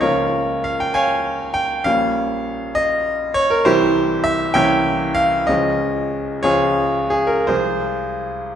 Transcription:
0.01 1.81 C#2 medium
0.01 1.81 F3 soft
0.01 1.82 A#3 soft
0.01 1.82 C#4 soft
0.01 0.61 F4 medium
0.01 0.61 A#4 medium
0.01 0.64 C#5 medium
0.64 0.80 F5 loud
0.80 0.96 G5 medium
0.94 1.51 C#5 medium
0.94 1.51 F5 medium
0.94 1.55 G#5 loud
1.54 1.85 G5 medium
1.84 3.61 A#1 medium
1.84 3.61 G3 soft
1.84 3.61 A#3 medium
1.84 3.61 C#4 soft
1.84 2.76 F5 loud
2.75 3.35 D#5 loud
3.34 3.50 C#5 loud
3.50 3.65 A#4 loud
3.65 4.53 C2 medium
3.65 4.53 E3 medium
3.65 4.53 G3 medium
3.65 4.53 C4 medium
3.65 4.22 E4 medium
3.65 4.22 G4 medium
3.65 4.25 C5 loud
4.24 4.53 E5 loud
4.54 5.45 C2 medium
4.54 5.45 E3 medium
4.54 5.45 A#3 medium
4.54 5.45 C#4 medium
4.54 5.13 C#5 medium
4.54 5.13 E5 medium
4.54 5.16 G5 loud
5.15 5.47 F5 loud
5.47 6.41 C#2 medium
5.47 6.41 F3 soft
5.47 6.41 G#3 medium
5.47 6.41 C#4 medium
5.47 6.43 D#5 loud
6.43 7.46 C#2 medium
6.43 7.46 F3 soft
6.43 7.46 G#3 medium
6.43 7.46 C#4 soft
6.43 7.08 F4 medium
6.43 7.08 G#4 medium
6.43 7.11 C#5 loud
7.10 7.29 G#4 medium
7.27 7.47 A#4 medium
7.47 8.55 C2 medium
7.47 8.55 F3 soft
7.47 8.55 G#3 soft
7.47 8.55 F4 medium
7.47 8.55 G#4 medium
7.47 8.55 C5 medium

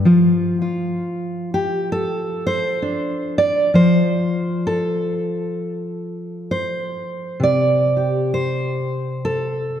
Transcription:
0.05 3.69 F3 medium
0.05 0.61 F4 medium
0.62 1.54 F4 medium
1.54 1.90 G4 medium
1.92 3.38 A4 loud
2.47 3.38 C5 loud
2.82 3.70 D4 soft
3.38 3.74 D5 loud
3.74 7.37 F3 medium
3.74 5.58 C5 loud
4.67 7.41 A4 medium
6.51 7.42 C5 medium
7.40 9.80 C3 medium
7.40 8.33 D5 loud
7.97 9.24 G4 soft
8.34 9.80 C5 medium
9.25 9.80 A4 medium

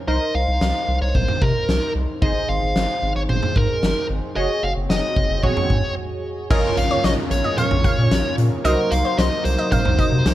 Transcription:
0.08 0.19 C2 loud
0.08 2.18 D#4 medium
0.08 2.18 A#4 medium
0.08 2.18 C5 medium
0.08 0.33 D#5 loud
0.35 0.46 C2 medium
0.35 0.98 F5 loud
0.48 0.59 C2 loud
0.61 0.73 C2 loud
0.61 snare loud
0.88 0.99 C2 loud
1.01 1.13 C2 loud
1.01 1.15 C#5 medium
1.15 1.26 C2 loud
1.15 1.42 C5 medium
1.15 kick medium
1.15 mid tom medium
1.28 mid tom medium
1.42 1.53 C3 loud
1.42 1.92 A#4 medium
1.42 kick medium
1.68 1.80 C2 loud
1.68 snare loud
1.95 2.07 C2 loud
2.22 2.33 G#1 loud
2.22 4.32 D#4 medium
2.22 4.32 G#4 medium
2.22 4.32 C5 medium
2.22 2.47 D#5 loud
2.22 kick loud
2.22 swell medium
2.49 2.60 G#1 medium
2.49 3.12 F5 loud
2.62 2.74 G#1 medium
2.76 2.87 G#1 loud
2.76 snare loud
3.02 3.14 G#1 loud
3.16 3.27 G#1 loud
3.16 3.21 C#5 medium
3.29 3.41 G#1 medium
3.29 3.57 C5 medium
3.29 mid tom medium
3.43 mid tom medium
3.56 3.67 G#2 loud
3.56 4.06 A#4 medium
3.56 kick medium
3.83 3.94 G#1 loud
3.83 snare loud
4.10 4.21 G#1 medium
4.36 4.48 F#1 loud
4.36 5.41 F#4 medium
4.36 5.41 G#4 medium
4.36 5.41 C#5 medium
4.36 4.64 D#5 loud
4.63 4.74 F#1 medium
4.63 4.70 F5 loud
4.77 4.88 F#1 loud
4.90 5.01 F#1 loud
4.90 5.43 D#5 medium
4.90 snare loud
5.16 5.28 F#1 medium
5.16 kick medium
5.30 5.41 F#1 medium
5.43 5.55 G#1 loud
5.43 6.48 F#4 medium
5.43 6.48 G#4 medium
5.43 6.48 C#5 medium
5.43 5.93 C#5 medium
5.43 kick medium
5.43 mid tom medium
5.57 mid tom medium
5.70 5.82 G#2 loud
5.70 kick medium
6.51 6.62 A#1 loud
6.51 8.63 C#3 medium
6.51 10.34 A#3 medium
6.51 8.61 C#4 medium
6.51 8.63 C#4 medium
6.51 8.61 F4 medium
6.51 8.63 F4 loud
6.51 8.61 A#4 medium
6.51 6.78 A#4 loud
6.51 8.61 C#5 medium
6.51 6.67 D#5 loud
6.51 kick loud
6.51 crash loud
6.51 downlifter medium
6.77 6.89 A#1 loud
6.77 7.02 F5 loud
6.77 closed hi-hat medium
6.91 6.99 C#5 medium
7.04 7.15 A#1 loud
7.04 7.12 C#5 medium
7.04 7.11 D#5 loud
7.04 snare loud
7.04 closed hi-hat medium
7.31 7.42 A#1 loud
7.31 7.56 C#5 loud
7.31 closed hi-hat medium
7.44 7.52 D#5 medium
7.58 8.34 C#5 medium
7.58 7.74 F5 medium
7.58 closed hi-hat medium
7.58 mid tom medium
7.71 7.82 A#1 medium
7.71 mid tom medium
7.84 7.92 F5 medium
7.84 kick medium
7.84 closed hi-hat medium
7.98 8.09 A#2 loud
8.11 8.23 A#1 loud
8.11 snare loud
8.11 closed hi-hat medium
8.38 8.49 A#2 loud
8.38 closed hi-hat medium
8.65 8.76 C2 loud
8.65 10.34 C3 medium
8.65 10.34 F#3 medium
8.65 10.34 D#4 medium
8.65 10.34 D#4 loud
8.65 10.34 F#4 medium
8.65 8.92 A#4 loud
8.65 10.34 A#4 medium
8.65 10.34 C5 medium
8.65 8.81 D#5 loud
8.65 closed hi-hat medium
8.91 9.03 C2 loud
8.91 9.19 F5 loud
8.91 closed hi-hat medium
9.05 9.13 C5 medium
9.18 9.30 C2 loud
9.18 9.26 C5 medium
9.18 9.43 D#5 loud
9.18 snare loud
9.18 closed hi-hat medium
9.45 9.56 C2 loud
9.45 9.70 C5 loud
9.45 closed hi-hat medium
9.59 9.67 D#5 medium
9.72 10.34 C5 medium
9.72 9.88 F5 medium
9.72 kick medium
9.72 closed hi-hat medium
9.72 mid tom medium
9.85 9.97 C2 loud
9.85 mid tom medium
9.99 10.07 D#5 medium
9.99 kick medium
9.99 closed hi-hat medium
10.12 10.23 C3 medium
10.25 10.34 C2 loud
10.25 snare loud
10.25 closed hi-hat medium

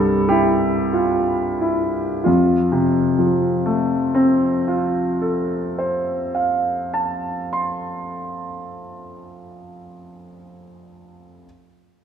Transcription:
0.00 2.22 C2 soft
0.00 2.29 G2 soft
0.00 0.68 G3 soft
0.00 0.30 A4 medium
0.00 2.30 A#4 soft
0.29 1.33 E4 soft
0.29 0.92 G4 soft
0.93 1.61 F4 soft
1.61 2.26 E4 soft
2.24 6.91 F2 soft
2.24 4.66 F4 soft
2.72 7.37 C3 soft
3.19 7.84 F3 soft
3.66 8.31 A3 soft
4.15 8.80 C4 soft
4.68 9.33 F4 soft
5.22 9.87 A4 soft
5.79 10.44 C5 soft
6.35 10.64 F5 soft
6.94 10.64 A5 soft
7.53 10.64 C6 soft

